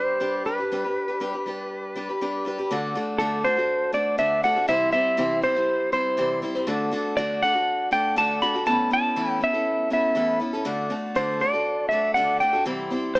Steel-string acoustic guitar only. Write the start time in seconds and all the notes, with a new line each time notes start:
Already playing: G3 D4 G4 B4
0.20 G3 D4 G4 B4
0.45 G3 D4 G4 B4
0.58 D4 G4 B4
0.72 G3 D4 G4 B4
0.84 D4 G4 B4
1.08 D4 G4 B4
1.20 G3 D4 G4 B4
1.33 D4 G4 B4
1.46 G3 D4 G4 B4
1.96 G3 D4 G4 B4
2.09 D4 G4 B4
2.21 G3 D4 G4 B4
2.45 G3 D4 G4 B4
2.58 D4 G4 B4
2.71 D3 A3 D4 F#4 A4
2.95 A3 D4 F#4 A4
3.19 D3 A3 D4 F#4 A4
3.44 A3 D4 F#4 A4
3.57 D4 F#4 A4
3.93 A3 D4 F#4 A4
4.18 D3 A3 D4 F#4 A4
4.43 A3 D4 F#4 A4
4.56 D4 F#4 A4
4.68 C3 E3 G3 C4 E4 C5
4.92 G3 C4 E4 C5
5.17 C3 E3 G3 C4 E4 C5
5.42 G3 C4 E4 C5
5.55 G3 C4 E4 C5
5.92 G3 C4 E4 C5
6.17 C3 E3 G3 C4 E4 C5
6.42 G3 C4 E4 C5
6.55 G3 C4 E4 C5
6.67 D3 A3 D4 F#4 A4
6.91 A3 D4 F#4 A4
7.17 D3 A3 D4 F#4 A4
7.43 A3 D4 F#4 A4
7.54 D4 F#4 A4
7.91 A3 D4 F#4 A4
8.16 D3 A3 D4 F#4 A4
8.42 A3 D4 F#4 A4
8.54 D4 F#4 A4
8.66 A2 E3 B3 C#4 E4 A4
8.91 B3 C#4 E4 A4
9.16 A2 E3 B3 C#4 E4 A4
9.41 B3 C#4 E4 A4
9.53 B3 C#4 E4 A4
9.90 B3 C#4 E4 A4
10.15 A2 E3 B3 C#4 E4 A4
10.40 B3 C#4 E4 A4
10.53 B3 C#4 E4 A4
10.65 D3 A3 D4 F#4 A4
10.90 A3 D4 F#4 A4
11.15 D3 A3 D4 F#4 A4
11.40 A3 D4 F#4 A4
11.54 D4 F#4 A4
11.91 A3 D4 F#4 A4
12.16 D3 A3 D4 F#4 A4
12.40 A3 D4 F#4 A4
12.53 D4 F#4 A4
12.65 C3 E3 G3 C4 E4 C5
12.91 G3 C4 E4 C5
13.15 C3 E3 G3 C4 E4 C5